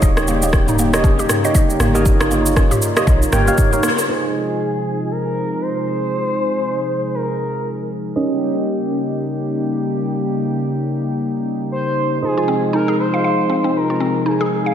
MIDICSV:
0, 0, Header, 1, 7, 480
1, 0, Start_track
1, 0, Key_signature, -4, "minor"
1, 0, Tempo, 508475
1, 22, Time_signature, 4, 2, 24, 8
1, 13917, End_track
2, 0, Start_track
2, 0, Title_t, "Analog synth lead"
2, 0, Program_c, 0, 81
2, 3868, Note_on_c, 0, 68, 95
2, 4824, Note_on_c, 0, 70, 106
2, 4838, Note_off_c, 0, 68, 0
2, 5300, Note_on_c, 0, 72, 117
2, 5314, Note_off_c, 0, 70, 0
2, 6745, Note_on_c, 0, 70, 89
2, 6759, Note_off_c, 0, 72, 0
2, 7464, Note_off_c, 0, 70, 0
2, 11062, Note_on_c, 0, 72, 109
2, 11508, Note_off_c, 0, 72, 0
2, 11554, Note_on_c, 0, 68, 101
2, 11995, Note_off_c, 0, 68, 0
2, 12030, Note_on_c, 0, 70, 99
2, 12250, Note_off_c, 0, 70, 0
2, 12267, Note_on_c, 0, 72, 110
2, 12993, Note_on_c, 0, 70, 101
2, 13007, Note_off_c, 0, 72, 0
2, 13473, Note_on_c, 0, 68, 109
2, 13487, Note_off_c, 0, 70, 0
2, 13917, Note_off_c, 0, 68, 0
2, 13917, End_track
3, 0, Start_track
3, 0, Title_t, "Tine electric piano"
3, 0, Program_c, 1, 4
3, 0, Note_on_c, 1, 63, 89
3, 0, Note_on_c, 1, 67, 84
3, 0, Note_on_c, 1, 70, 80
3, 0, Note_on_c, 1, 73, 84
3, 0, Note_on_c, 1, 75, 94
3, 850, Note_off_c, 1, 63, 0
3, 850, Note_off_c, 1, 67, 0
3, 850, Note_off_c, 1, 70, 0
3, 850, Note_off_c, 1, 73, 0
3, 850, Note_off_c, 1, 75, 0
3, 880, Note_on_c, 1, 73, 77
3, 881, Note_on_c, 1, 63, 86
3, 881, Note_on_c, 1, 75, 94
3, 882, Note_on_c, 1, 67, 80
3, 882, Note_on_c, 1, 70, 82
3, 1097, Note_off_c, 1, 63, 0
3, 1097, Note_off_c, 1, 67, 0
3, 1097, Note_off_c, 1, 73, 0
3, 1097, Note_off_c, 1, 75, 0
3, 1098, Note_off_c, 1, 70, 0
3, 1363, Note_on_c, 1, 63, 75
3, 1363, Note_on_c, 1, 67, 69
3, 1363, Note_on_c, 1, 70, 64
3, 1364, Note_on_c, 1, 73, 67
3, 1364, Note_on_c, 1, 79, 77
3, 1809, Note_off_c, 1, 63, 0
3, 1809, Note_off_c, 1, 67, 0
3, 1809, Note_off_c, 1, 70, 0
3, 1810, Note_off_c, 1, 73, 0
3, 1810, Note_off_c, 1, 79, 0
3, 1839, Note_on_c, 1, 63, 99
3, 1840, Note_on_c, 1, 67, 85
3, 1840, Note_on_c, 1, 70, 82
3, 1840, Note_on_c, 1, 73, 90
3, 1841, Note_on_c, 1, 75, 102
3, 2767, Note_off_c, 1, 63, 0
3, 2768, Note_off_c, 1, 67, 0
3, 2768, Note_off_c, 1, 70, 0
3, 2768, Note_off_c, 1, 73, 0
3, 2768, Note_off_c, 1, 75, 0
3, 2801, Note_on_c, 1, 63, 74
3, 2801, Note_on_c, 1, 67, 70
3, 2801, Note_on_c, 1, 70, 69
3, 2802, Note_on_c, 1, 73, 71
3, 2802, Note_on_c, 1, 75, 87
3, 3121, Note_off_c, 1, 63, 0
3, 3121, Note_off_c, 1, 67, 0
3, 3121, Note_off_c, 1, 70, 0
3, 3121, Note_off_c, 1, 73, 0
3, 3121, Note_off_c, 1, 75, 0
3, 3139, Note_on_c, 1, 63, 95
3, 3139, Note_on_c, 1, 67, 85
3, 3139, Note_on_c, 1, 73, 89
3, 3139, Note_on_c, 1, 79, 104
3, 3140, Note_on_c, 1, 70, 86
3, 3260, Note_off_c, 1, 63, 0
3, 3260, Note_off_c, 1, 79, 0
3, 3261, Note_off_c, 1, 67, 0
3, 3261, Note_off_c, 1, 70, 0
3, 3261, Note_off_c, 1, 73, 0
3, 3281, Note_on_c, 1, 70, 74
3, 3281, Note_on_c, 1, 73, 76
3, 3282, Note_on_c, 1, 63, 79
3, 3282, Note_on_c, 1, 67, 74
3, 3282, Note_on_c, 1, 77, 88
3, 3488, Note_off_c, 1, 67, 0
3, 3488, Note_off_c, 1, 70, 0
3, 3488, Note_off_c, 1, 73, 0
3, 3489, Note_off_c, 1, 63, 0
3, 3489, Note_off_c, 1, 77, 0
3, 3521, Note_on_c, 1, 70, 65
3, 3522, Note_on_c, 1, 63, 74
3, 3522, Note_on_c, 1, 73, 69
3, 3522, Note_on_c, 1, 77, 81
3, 3523, Note_on_c, 1, 67, 68
3, 3641, Note_off_c, 1, 63, 0
3, 3641, Note_off_c, 1, 67, 0
3, 3641, Note_off_c, 1, 70, 0
3, 3641, Note_off_c, 1, 73, 0
3, 3641, Note_off_c, 1, 77, 0
3, 3859, Note_on_c, 1, 63, 69
3, 3859, Note_on_c, 1, 72, 63
3, 3859, Note_on_c, 1, 75, 73
3, 3860, Note_on_c, 1, 65, 63
3, 3860, Note_on_c, 1, 68, 65
3, 7677, Note_off_c, 1, 63, 0
3, 7677, Note_off_c, 1, 65, 0
3, 7677, Note_off_c, 1, 68, 0
3, 7677, Note_off_c, 1, 72, 0
3, 7677, Note_off_c, 1, 75, 0
3, 7700, Note_on_c, 1, 63, 64
3, 7701, Note_on_c, 1, 67, 63
3, 7702, Note_on_c, 1, 61, 71
3, 7702, Note_on_c, 1, 70, 63
3, 7702, Note_on_c, 1, 75, 78
3, 11517, Note_off_c, 1, 63, 0
3, 11518, Note_off_c, 1, 61, 0
3, 11518, Note_off_c, 1, 67, 0
3, 11518, Note_off_c, 1, 70, 0
3, 11518, Note_off_c, 1, 75, 0
3, 11539, Note_on_c, 1, 63, 71
3, 11539, Note_on_c, 1, 65, 64
3, 11539, Note_on_c, 1, 68, 66
3, 11540, Note_on_c, 1, 72, 64
3, 11540, Note_on_c, 1, 75, 77
3, 13917, Note_off_c, 1, 63, 0
3, 13917, Note_off_c, 1, 65, 0
3, 13917, Note_off_c, 1, 68, 0
3, 13917, Note_off_c, 1, 72, 0
3, 13917, Note_off_c, 1, 75, 0
3, 13917, End_track
4, 0, Start_track
4, 0, Title_t, "Synth pluck"
4, 0, Program_c, 2, 84
4, 25, Note_on_c, 2, 75, 84
4, 150, Note_off_c, 2, 75, 0
4, 265, Note_on_c, 2, 58, 73
4, 398, Note_off_c, 2, 58, 0
4, 407, Note_on_c, 2, 58, 77
4, 459, Note_off_c, 2, 58, 0
4, 646, Note_on_c, 2, 63, 76
4, 739, Note_off_c, 2, 63, 0
4, 747, Note_on_c, 2, 58, 74
4, 872, Note_off_c, 2, 58, 0
4, 984, Note_on_c, 2, 61, 81
4, 1110, Note_off_c, 2, 61, 0
4, 1126, Note_on_c, 2, 67, 99
4, 1178, Note_off_c, 2, 67, 0
4, 1365, Note_on_c, 2, 75, 77
4, 1453, Note_off_c, 2, 75, 0
4, 1465, Note_on_c, 2, 75, 81
4, 1590, Note_off_c, 2, 75, 0
4, 1706, Note_on_c, 2, 58, 75
4, 1833, Note_off_c, 2, 58, 0
4, 1844, Note_on_c, 2, 58, 80
4, 1897, Note_off_c, 2, 58, 0
4, 2084, Note_on_c, 2, 63, 73
4, 2177, Note_off_c, 2, 63, 0
4, 2182, Note_on_c, 2, 58, 73
4, 2309, Note_off_c, 2, 58, 0
4, 2422, Note_on_c, 2, 61, 81
4, 2549, Note_off_c, 2, 61, 0
4, 2560, Note_on_c, 2, 67, 97
4, 2615, Note_off_c, 2, 67, 0
4, 2801, Note_on_c, 2, 75, 76
4, 2886, Note_off_c, 2, 75, 0
4, 2898, Note_on_c, 2, 75, 81
4, 3027, Note_off_c, 2, 75, 0
4, 3139, Note_on_c, 2, 58, 73
4, 3269, Note_off_c, 2, 58, 0
4, 3281, Note_on_c, 2, 58, 77
4, 3335, Note_off_c, 2, 58, 0
4, 3518, Note_on_c, 2, 63, 74
4, 3614, Note_off_c, 2, 63, 0
4, 3616, Note_on_c, 2, 58, 76
4, 3746, Note_off_c, 2, 58, 0
4, 11682, Note_on_c, 2, 65, 69
4, 11776, Note_off_c, 2, 65, 0
4, 11781, Note_on_c, 2, 60, 70
4, 11909, Note_off_c, 2, 60, 0
4, 12019, Note_on_c, 2, 63, 82
4, 12148, Note_off_c, 2, 63, 0
4, 12160, Note_on_c, 2, 68, 92
4, 12215, Note_off_c, 2, 68, 0
4, 12401, Note_on_c, 2, 77, 70
4, 12490, Note_off_c, 2, 77, 0
4, 12501, Note_on_c, 2, 77, 77
4, 12629, Note_off_c, 2, 77, 0
4, 12740, Note_on_c, 2, 60, 67
4, 12867, Note_off_c, 2, 60, 0
4, 12879, Note_on_c, 2, 60, 71
4, 12934, Note_off_c, 2, 60, 0
4, 13121, Note_on_c, 2, 65, 73
4, 13216, Note_off_c, 2, 65, 0
4, 13220, Note_on_c, 2, 60, 72
4, 13348, Note_off_c, 2, 60, 0
4, 13461, Note_on_c, 2, 63, 77
4, 13588, Note_off_c, 2, 63, 0
4, 13600, Note_on_c, 2, 68, 97
4, 13655, Note_off_c, 2, 68, 0
4, 13842, Note_on_c, 2, 77, 70
4, 13917, Note_off_c, 2, 77, 0
4, 13917, End_track
5, 0, Start_track
5, 0, Title_t, "Analog synth pad"
5, 0, Program_c, 3, 89
5, 15, Note_on_c, 3, 67, 83
5, 16, Note_on_c, 3, 63, 68
5, 19, Note_on_c, 3, 55, 70
5, 20, Note_on_c, 3, 58, 73
5, 21, Note_on_c, 3, 49, 75
5, 1919, Note_off_c, 3, 67, 0
5, 1936, Note_on_c, 3, 65, 84
5, 3821, Note_off_c, 3, 63, 0
5, 3823, Note_off_c, 3, 49, 0
5, 3823, Note_off_c, 3, 55, 0
5, 3823, Note_off_c, 3, 58, 0
5, 3840, Note_off_c, 3, 65, 0
5, 3860, Note_on_c, 3, 48, 73
5, 3860, Note_on_c, 3, 68, 83
5, 3861, Note_on_c, 3, 56, 67
5, 3861, Note_on_c, 3, 63, 65
5, 3862, Note_on_c, 3, 53, 62
5, 7663, Note_off_c, 3, 48, 0
5, 7663, Note_off_c, 3, 68, 0
5, 7664, Note_off_c, 3, 53, 0
5, 7664, Note_off_c, 3, 56, 0
5, 7664, Note_off_c, 3, 63, 0
5, 7698, Note_on_c, 3, 58, 67
5, 7699, Note_on_c, 3, 67, 79
5, 7700, Note_on_c, 3, 49, 70
5, 7700, Note_on_c, 3, 55, 67
5, 7701, Note_on_c, 3, 63, 67
5, 11502, Note_off_c, 3, 58, 0
5, 11503, Note_off_c, 3, 49, 0
5, 11503, Note_off_c, 3, 55, 0
5, 11503, Note_off_c, 3, 67, 0
5, 11545, Note_on_c, 3, 68, 79
5, 11546, Note_on_c, 3, 56, 69
5, 11547, Note_on_c, 3, 53, 69
5, 11550, Note_on_c, 3, 48, 72
5, 13917, Note_off_c, 3, 48, 0
5, 13917, Note_off_c, 3, 53, 0
5, 13917, Note_off_c, 3, 56, 0
5, 13917, Note_off_c, 3, 63, 0
5, 13917, Note_off_c, 3, 68, 0
5, 13917, End_track
6, 0, Start_track
6, 0, Title_t, "808-style bass"
6, 0, Program_c, 4, 38
6, 20, Note_on_c, 4, 27, 96
6, 1158, Note_off_c, 4, 27, 0
6, 1697, Note_on_c, 4, 31, 76
6, 2597, Note_off_c, 4, 31, 0
6, 2898, Note_on_c, 4, 34, 100
6, 3062, Note_off_c, 4, 34, 0
6, 3139, Note_on_c, 4, 31, 108
6, 3302, Note_off_c, 4, 31, 0
6, 13917, End_track
7, 0, Start_track
7, 0, Title_t, "Drums"
7, 21, Note_on_c, 9, 36, 109
7, 22, Note_on_c, 9, 82, 84
7, 116, Note_off_c, 9, 36, 0
7, 116, Note_off_c, 9, 82, 0
7, 161, Note_on_c, 9, 37, 81
7, 163, Note_on_c, 9, 82, 47
7, 256, Note_off_c, 9, 37, 0
7, 257, Note_off_c, 9, 82, 0
7, 260, Note_on_c, 9, 82, 46
7, 354, Note_off_c, 9, 82, 0
7, 401, Note_on_c, 9, 82, 84
7, 495, Note_off_c, 9, 82, 0
7, 500, Note_on_c, 9, 37, 73
7, 501, Note_on_c, 9, 36, 94
7, 501, Note_on_c, 9, 82, 45
7, 594, Note_off_c, 9, 37, 0
7, 595, Note_off_c, 9, 82, 0
7, 596, Note_off_c, 9, 36, 0
7, 643, Note_on_c, 9, 45, 86
7, 644, Note_on_c, 9, 82, 52
7, 737, Note_off_c, 9, 45, 0
7, 739, Note_off_c, 9, 82, 0
7, 743, Note_on_c, 9, 82, 85
7, 838, Note_off_c, 9, 82, 0
7, 884, Note_on_c, 9, 37, 88
7, 886, Note_on_c, 9, 82, 51
7, 979, Note_off_c, 9, 37, 0
7, 980, Note_off_c, 9, 82, 0
7, 981, Note_on_c, 9, 36, 110
7, 983, Note_on_c, 9, 82, 49
7, 1075, Note_off_c, 9, 36, 0
7, 1078, Note_off_c, 9, 82, 0
7, 1125, Note_on_c, 9, 82, 49
7, 1219, Note_off_c, 9, 82, 0
7, 1222, Note_on_c, 9, 37, 73
7, 1222, Note_on_c, 9, 45, 72
7, 1223, Note_on_c, 9, 82, 85
7, 1316, Note_off_c, 9, 37, 0
7, 1316, Note_off_c, 9, 45, 0
7, 1318, Note_off_c, 9, 82, 0
7, 1365, Note_on_c, 9, 82, 48
7, 1460, Note_off_c, 9, 82, 0
7, 1460, Note_on_c, 9, 36, 94
7, 1463, Note_on_c, 9, 82, 82
7, 1555, Note_off_c, 9, 36, 0
7, 1558, Note_off_c, 9, 82, 0
7, 1605, Note_on_c, 9, 82, 46
7, 1699, Note_off_c, 9, 82, 0
7, 1700, Note_on_c, 9, 37, 87
7, 1700, Note_on_c, 9, 45, 88
7, 1701, Note_on_c, 9, 82, 81
7, 1794, Note_off_c, 9, 37, 0
7, 1794, Note_off_c, 9, 45, 0
7, 1795, Note_off_c, 9, 82, 0
7, 1843, Note_on_c, 9, 82, 48
7, 1937, Note_off_c, 9, 82, 0
7, 1941, Note_on_c, 9, 36, 107
7, 1942, Note_on_c, 9, 82, 91
7, 2036, Note_off_c, 9, 36, 0
7, 2036, Note_off_c, 9, 82, 0
7, 2082, Note_on_c, 9, 37, 92
7, 2084, Note_on_c, 9, 82, 47
7, 2177, Note_off_c, 9, 37, 0
7, 2178, Note_off_c, 9, 82, 0
7, 2182, Note_on_c, 9, 82, 52
7, 2276, Note_off_c, 9, 82, 0
7, 2323, Note_on_c, 9, 82, 86
7, 2417, Note_off_c, 9, 82, 0
7, 2421, Note_on_c, 9, 36, 94
7, 2422, Note_on_c, 9, 37, 74
7, 2423, Note_on_c, 9, 82, 50
7, 2515, Note_off_c, 9, 36, 0
7, 2516, Note_off_c, 9, 37, 0
7, 2517, Note_off_c, 9, 82, 0
7, 2562, Note_on_c, 9, 45, 85
7, 2564, Note_on_c, 9, 82, 49
7, 2657, Note_off_c, 9, 45, 0
7, 2658, Note_off_c, 9, 82, 0
7, 2663, Note_on_c, 9, 82, 85
7, 2757, Note_off_c, 9, 82, 0
7, 2801, Note_on_c, 9, 37, 94
7, 2802, Note_on_c, 9, 82, 50
7, 2895, Note_off_c, 9, 37, 0
7, 2896, Note_off_c, 9, 82, 0
7, 2901, Note_on_c, 9, 36, 115
7, 2903, Note_on_c, 9, 82, 49
7, 2995, Note_off_c, 9, 36, 0
7, 2997, Note_off_c, 9, 82, 0
7, 3043, Note_on_c, 9, 82, 49
7, 3137, Note_off_c, 9, 82, 0
7, 3140, Note_on_c, 9, 37, 75
7, 3140, Note_on_c, 9, 45, 78
7, 3141, Note_on_c, 9, 82, 85
7, 3234, Note_off_c, 9, 37, 0
7, 3234, Note_off_c, 9, 45, 0
7, 3236, Note_off_c, 9, 82, 0
7, 3282, Note_on_c, 9, 82, 50
7, 3376, Note_off_c, 9, 82, 0
7, 3378, Note_on_c, 9, 45, 83
7, 3379, Note_on_c, 9, 82, 90
7, 3380, Note_on_c, 9, 36, 98
7, 3472, Note_off_c, 9, 45, 0
7, 3473, Note_off_c, 9, 82, 0
7, 3474, Note_off_c, 9, 36, 0
7, 3520, Note_on_c, 9, 82, 50
7, 3614, Note_off_c, 9, 82, 0
7, 3618, Note_on_c, 9, 37, 93
7, 3619, Note_on_c, 9, 82, 87
7, 3712, Note_off_c, 9, 37, 0
7, 3713, Note_off_c, 9, 82, 0
7, 3762, Note_on_c, 9, 82, 49
7, 3857, Note_off_c, 9, 82, 0
7, 13917, End_track
0, 0, End_of_file